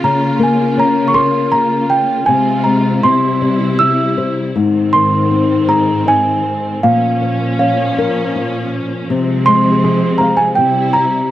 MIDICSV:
0, 0, Header, 1, 4, 480
1, 0, Start_track
1, 0, Tempo, 755668
1, 16, Time_signature, 3, 2, 24, 8
1, 4336, Tempo, 748130
1, 7213, End_track
2, 0, Start_track
2, 0, Title_t, "Celesta"
2, 0, Program_c, 0, 8
2, 26, Note_on_c, 0, 82, 73
2, 240, Note_off_c, 0, 82, 0
2, 275, Note_on_c, 0, 80, 57
2, 485, Note_off_c, 0, 80, 0
2, 505, Note_on_c, 0, 82, 72
2, 685, Note_on_c, 0, 85, 61
2, 697, Note_off_c, 0, 82, 0
2, 726, Note_on_c, 0, 84, 78
2, 728, Note_off_c, 0, 85, 0
2, 964, Note_on_c, 0, 82, 78
2, 972, Note_off_c, 0, 84, 0
2, 1206, Note_on_c, 0, 79, 70
2, 1209, Note_off_c, 0, 82, 0
2, 1436, Note_on_c, 0, 80, 77
2, 1450, Note_off_c, 0, 79, 0
2, 1662, Note_off_c, 0, 80, 0
2, 1676, Note_on_c, 0, 82, 66
2, 1927, Note_off_c, 0, 82, 0
2, 1928, Note_on_c, 0, 84, 82
2, 2384, Note_off_c, 0, 84, 0
2, 2407, Note_on_c, 0, 88, 81
2, 2747, Note_off_c, 0, 88, 0
2, 3131, Note_on_c, 0, 84, 84
2, 3612, Note_on_c, 0, 82, 75
2, 3629, Note_off_c, 0, 84, 0
2, 3839, Note_off_c, 0, 82, 0
2, 3862, Note_on_c, 0, 80, 85
2, 4341, Note_on_c, 0, 77, 80
2, 4355, Note_off_c, 0, 80, 0
2, 4820, Note_off_c, 0, 77, 0
2, 4828, Note_on_c, 0, 77, 66
2, 5521, Note_off_c, 0, 77, 0
2, 6024, Note_on_c, 0, 84, 93
2, 6488, Note_on_c, 0, 82, 78
2, 6512, Note_off_c, 0, 84, 0
2, 6608, Note_on_c, 0, 80, 77
2, 6616, Note_off_c, 0, 82, 0
2, 6664, Note_off_c, 0, 80, 0
2, 6727, Note_on_c, 0, 79, 74
2, 6970, Note_on_c, 0, 82, 83
2, 6981, Note_off_c, 0, 79, 0
2, 7213, Note_off_c, 0, 82, 0
2, 7213, End_track
3, 0, Start_track
3, 0, Title_t, "Nylon-string guitar"
3, 0, Program_c, 1, 24
3, 23, Note_on_c, 1, 49, 66
3, 249, Note_on_c, 1, 58, 49
3, 491, Note_on_c, 1, 61, 51
3, 726, Note_on_c, 1, 70, 54
3, 972, Note_on_c, 1, 65, 45
3, 1176, Note_off_c, 1, 58, 0
3, 1417, Note_off_c, 1, 61, 0
3, 1419, Note_off_c, 1, 70, 0
3, 1420, Note_off_c, 1, 49, 0
3, 1431, Note_off_c, 1, 65, 0
3, 1451, Note_on_c, 1, 48, 61
3, 1687, Note_on_c, 1, 56, 45
3, 1912, Note_off_c, 1, 48, 0
3, 1918, Note_off_c, 1, 56, 0
3, 1932, Note_on_c, 1, 48, 57
3, 2171, Note_on_c, 1, 55, 50
3, 2413, Note_on_c, 1, 64, 46
3, 2653, Note_on_c, 1, 72, 44
3, 2874, Note_off_c, 1, 48, 0
3, 2876, Note_off_c, 1, 55, 0
3, 2883, Note_off_c, 1, 64, 0
3, 2889, Note_off_c, 1, 72, 0
3, 2894, Note_on_c, 1, 44, 54
3, 3142, Note_on_c, 1, 51, 47
3, 3372, Note_on_c, 1, 60, 51
3, 3611, Note_on_c, 1, 68, 52
3, 3851, Note_on_c, 1, 63, 45
3, 4076, Note_off_c, 1, 51, 0
3, 4310, Note_off_c, 1, 60, 0
3, 4313, Note_off_c, 1, 44, 0
3, 4313, Note_off_c, 1, 68, 0
3, 4320, Note_off_c, 1, 63, 0
3, 4340, Note_on_c, 1, 46, 57
3, 4587, Note_on_c, 1, 53, 41
3, 4827, Note_on_c, 1, 61, 51
3, 5080, Note_on_c, 1, 70, 58
3, 5319, Note_on_c, 1, 65, 47
3, 5521, Note_off_c, 1, 53, 0
3, 5758, Note_off_c, 1, 46, 0
3, 5760, Note_off_c, 1, 61, 0
3, 5770, Note_off_c, 1, 70, 0
3, 5777, Note_off_c, 1, 65, 0
3, 5795, Note_on_c, 1, 48, 63
3, 6036, Note_on_c, 1, 56, 47
3, 6270, Note_on_c, 1, 68, 52
3, 6505, Note_on_c, 1, 77, 53
3, 6717, Note_off_c, 1, 48, 0
3, 6722, Note_off_c, 1, 56, 0
3, 6728, Note_off_c, 1, 68, 0
3, 6734, Note_off_c, 1, 77, 0
3, 6744, Note_on_c, 1, 48, 49
3, 6987, Note_on_c, 1, 55, 39
3, 7209, Note_off_c, 1, 48, 0
3, 7213, Note_off_c, 1, 55, 0
3, 7213, End_track
4, 0, Start_track
4, 0, Title_t, "String section"
4, 0, Program_c, 2, 48
4, 0, Note_on_c, 2, 49, 65
4, 0, Note_on_c, 2, 65, 72
4, 14, Note_on_c, 2, 58, 64
4, 1416, Note_off_c, 2, 49, 0
4, 1416, Note_off_c, 2, 65, 0
4, 1426, Note_off_c, 2, 58, 0
4, 1436, Note_on_c, 2, 48, 68
4, 1439, Note_on_c, 2, 60, 60
4, 1439, Note_on_c, 2, 65, 72
4, 1444, Note_on_c, 2, 56, 61
4, 1914, Note_on_c, 2, 55, 54
4, 1916, Note_off_c, 2, 60, 0
4, 1916, Note_off_c, 2, 65, 0
4, 1917, Note_on_c, 2, 64, 68
4, 1919, Note_off_c, 2, 56, 0
4, 2877, Note_off_c, 2, 48, 0
4, 2881, Note_off_c, 2, 55, 0
4, 2882, Note_off_c, 2, 64, 0
4, 2900, Note_on_c, 2, 44, 69
4, 2900, Note_on_c, 2, 51, 54
4, 2903, Note_on_c, 2, 60, 75
4, 4326, Note_off_c, 2, 44, 0
4, 4326, Note_off_c, 2, 51, 0
4, 4328, Note_off_c, 2, 60, 0
4, 4349, Note_on_c, 2, 53, 58
4, 4352, Note_on_c, 2, 46, 65
4, 4352, Note_on_c, 2, 61, 80
4, 5774, Note_off_c, 2, 53, 0
4, 5775, Note_off_c, 2, 46, 0
4, 5775, Note_off_c, 2, 61, 0
4, 5790, Note_on_c, 2, 48, 68
4, 5790, Note_on_c, 2, 56, 64
4, 5798, Note_on_c, 2, 60, 74
4, 5799, Note_on_c, 2, 53, 64
4, 6731, Note_off_c, 2, 48, 0
4, 6731, Note_off_c, 2, 56, 0
4, 6735, Note_off_c, 2, 53, 0
4, 6735, Note_off_c, 2, 60, 0
4, 6744, Note_on_c, 2, 64, 69
4, 6749, Note_on_c, 2, 48, 64
4, 6752, Note_on_c, 2, 55, 60
4, 7213, Note_off_c, 2, 48, 0
4, 7213, Note_off_c, 2, 55, 0
4, 7213, Note_off_c, 2, 64, 0
4, 7213, End_track
0, 0, End_of_file